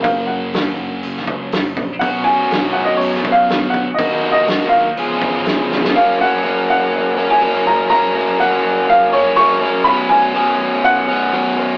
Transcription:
<<
  \new Staff \with { instrumentName = "Upright piano" } { \time 4/4 \key fis \major \tempo 4 = 122 eis''8 fis''2. r8 | fis''8 gis''4 fis''16 dis''16 cis''8. eis''8. fis''8 | dis''8. dis''8. eis''4. r4 | eis''8 fis''4 fis''4~ fis''16 gis''8. ais''8 |
ais''4 fis''4 eis''8 cis''8 cis'''4 | b''8 gis''4 r8 fis''2 | }
  \new Staff \with { instrumentName = "Overdriven electric guitar" } { \time 4/4 \key fis \major <ais cis' fis'>1 | <fis b cis' fis'>1 | <fis ais dis' fis'>2 <eis b cis' gis'>2 | <fis ais cis'>8 <ais cis'>8 <fis ais cis'>4. <ais cis'>8 <fis ais cis'>8 <ais cis'>8 |
<fis ais cis'>8 <ais cis'>8 <fis ais cis'>4. <ais cis'>8 <fis ais cis'>8 <ais cis'>8 | <fis b cis'>8 <b cis'>8 <fis b cis'>4. <b cis'>8 <fis b cis'>8 <b cis'>8 | }
  \new Staff \with { instrumentName = "Distorted electric guitar" } { \time 4/4 \key fis \major <fis, cis fis ais cis' fis'>1 | <b, fis b cis' fis'>1 | <dis ais dis' fis'>2 <cis eis gis cis' eis'>2 | r1 |
r1 | r1 | }
  \new Staff \with { instrumentName = "Picked electric bass" } { \clef bass \time 4/4 \key fis \major fis,,8 fis,,8 dis,8 fis,,8 fis,,8 cis,8 fis,,8 ais,,8 | b,,8 fis,8 b,,8 b,,8 fis,4 gis,,8 d,8 | dis,8 dis,8 cis,8 dis,8 cis,8 gis,,8 cis,8 cis,8 | r1 |
r1 | r1 | }
  \new DrumStaff \with { instrumentName = "Drums" } \drummode { \time 4/4 <hho bd>4 <hho sn>4 hho16 sn16 bd8 <hho sn>8 bd8 | <hho bd>4 <hho sn>4 hho16 sn16 bd8 <hho sn>8 bd8 | <hho bd>4 <hho sn>16 sn8. hho8 bd8 <hho sn>8 sn16 sn16 | r4 r4 r4 r4 |
r4 r4 r4 r4 | r4 r4 r4 r4 | }
>>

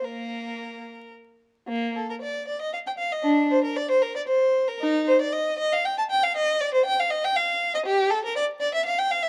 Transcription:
\new Staff \with { instrumentName = "Violin" } { \time 3/4 \key bes \major \tempo 4 = 117 << { bes'2 r4 | bes8 a'16 bes'16 d''8 d''16 ees''16 f''16 g''16 f''16 ees''16 | d'8 c''16 bes'16 d''16 c''16 bes'16 d''16 c''8. bes'16 | ees'8 c''16 d''16 ees''8 ees''16 f''16 g''16 a''16 g''16 f''16 |
ees''8 d''16 c''16 g''16 f''16 ees''16 g''16 f''8. ees''16 | \key f \major g'8 a'16 bes'16 d''8 d''16 e''16 f''16 g''16 f''16 e''16 | } \\ { bes4. r4. | r2. | r2. | r2. |
r2. | r2. | } >> }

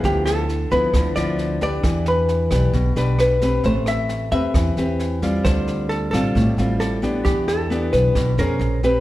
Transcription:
<<
  \new Staff \with { instrumentName = "Hollow-body jazz guitar" } { \time 4/4 \key e \phrygian \tempo 4 = 133 g'8 a'4 b'4 d''4 d''8~ | d''8 b'2 r8 b'4 | c''8 e''4 e''2~ e''8 | c''4 a'8 a'4. a'4 |
g'8 a'4 b'4 bes'4 b'8 | }
  \new Staff \with { instrumentName = "Nylon-string guitar" } { \time 4/4 \key e \phrygian << { <f b e'>4 r8 <f b e'>4 <f b e'>4 <d' g' b'>8~ | <d' g' b'>4. <d' g' b'>4 <d' g' b'>4 <c' g' b'>8~ | <c' g' b'>4. <c' g' b'>4 <c' g' b'>4 <g c' f'>8~ | <g c' f'>4. <g c' f'>4 <g c' f'>4 <b d' g'>8~ |
<b d' g'>4 <b d' g'>4. <cis' gis' c''>4 <c' g' b'>8 | } \\ { d2 d2 | e2 b,2 | a2 e2 | d2 a,2 |
e2 b,4 r4 | } >> }
  \new Staff \with { instrumentName = "Upright bass" } { \clef bass \time 4/4 \key e \phrygian d,4. d,8 d,8 d,4. | e,4. b,,8 b,,8 b,,4. | a,,4. e,8 e,8 e,4. | d,4. a,,8 a,,8 a,,4. |
e,4. b,,8 b,,8 f,8 bes,,4 | }
  \new DrumStaff \with { instrumentName = "Drums" } \drummode { \time 4/4 <bd sn>8 <ss sn>8 sn8 <bd sn>8 <bd ss sn>8 sn8 sn8 <bd sn>8 | <bd ss sn>8 sn8 sn8 <bd ss sn>8 <bd sn>8 sn8 <ss sn>8 <bd sn>8 | <bd sn>8 <ss sn>8 sn8 <bd sn>8 <bd ss sn>8 sn8 sn8 <bd sn>8 | <bd ss sn>8 sn8 sn8 <bd ss sn>8 <bd sn>8 sn8 <ss sn>8 <bd sn>8 |
<bd sn>8 <ss sn>8 sn8 <bd sn>8 <bd ss sn>8 sn8 sn8 <bd sn>8 | }
>>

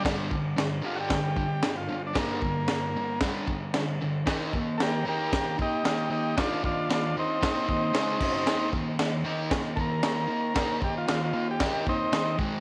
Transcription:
<<
  \new Staff \with { instrumentName = "Transistor combo organ" } { \time 4/4 \key ees \lydian \tempo 4 = 114 r4. f'16 <fis' g'>4. f'8 d'16 | bes2 r2 | r4 <g' a' bes'>8 <g' bes'>8 <g' bes'>8 <ees' g'>8 <ees' g'>8 <ees' g'>8 | <d' f'>8 <d' f'>8 <d' f'>8 <c' ees'>2~ <c' ees'>8~ |
<c' ees'>8 r2 <a' bes'>4.~ | <a' bes'>8 g'16 f'8 f'8 g'8. <c' ees'>4 r8 | }
  \new Staff \with { instrumentName = "Distorted electric guitar" } { \clef bass \time 4/4 \key ees \lydian <g, d g>8 <g, d>8 <g, d>8 <g, d g>8 <g, d>8 <g, d>8 <g, d>8 <g, d>8 | <g, d g>8 <g, d>8 <g, d>8 <g, d>8 <g, d g>8 <g, d>8 <g, d>8 <g, d>8 | <ees bes ees'>8 <ees bes>8 <ees bes>8 <ees bes ees'>8 <ees bes>8 <ees bes>8 <ees bes>8 <ees bes>8 | <ees bes ees'>8 <ees bes>8 <ees bes>8 <ees bes>8 <ees bes ees'>8 <ees bes>8 <cis gis cis'>8 <fis, cis fis>8 |
<ees bes ees'>8 <ees bes>8 <ees bes>8 <ees bes ees'>8 <ees bes>8 <ees bes>8 <ees bes>8 <ees bes>8 | <ees bes ees'>8 <ees bes>8 <ees bes>8 <ees bes>8 <ees bes ees'>8 <ees bes>8 <ees bes>8 <aes, ees aes>8 | }
  \new DrumStaff \with { instrumentName = "Drums" } \drummode { \time 4/4 <cymc bd sn>8 bd8 <cymc sn>4 <cymc bd sn>8 bd8 <cymc sn>4 | <cymc bd sn>8 bd8 <cymc sn>4 <cymc bd sn>8 bd8 <cymc sn>4 | <cymc bd sn>8 bd8 <cymc sn>4 <cymc bd sn>8 bd8 <cymc sn>4 | <cymc bd sn>8 bd8 <cymc sn>4 <cymc bd sn>8 bd8 <cymc sn>8 <cymc bd>8 |
<cymc sn>8 bd8 <cymc sn>4 <cymc bd sn>8 bd8 <cymc sn>4 | <cymc bd sn>8 bd8 <cymc sn>4 <cymc bd sn>8 bd8 <cymc sn>8 bd8 | }
>>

